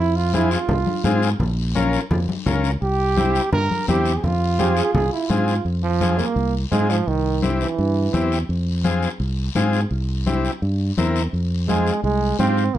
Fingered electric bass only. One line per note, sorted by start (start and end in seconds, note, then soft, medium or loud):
0.00 0.55 F2 medium
0.69 0.83 C2 loud
1.04 1.33 G#2 medium
1.40 1.96 A#1 medium
2.11 2.25 F2 loud
2.46 2.75 C#2 medium
2.82 3.38 C2 loud
3.52 3.67 G2 loud
3.88 4.16 E2 medium
4.24 4.80 F2 medium
4.94 5.08 C2 loud
5.30 5.58 G#2 medium
5.65 6.22 F2 medium
6.36 6.64 C2 medium
6.72 7.00 G#2 medium
7.07 7.64 C2 medium
7.79 8.07 G2 medium
8.14 8.42 E2 medium
8.49 9.06 F2 medium
9.20 9.48 C2 medium
9.55 9.84 G#2 medium
9.91 10.48 C2 medium
10.62 10.90 G2 medium
10.98 11.26 E2 medium
11.33 11.90 F2 medium
12.04 12.32 C2 loud
12.39 12.67 G#2 medium
12.75 12.78 C2 medium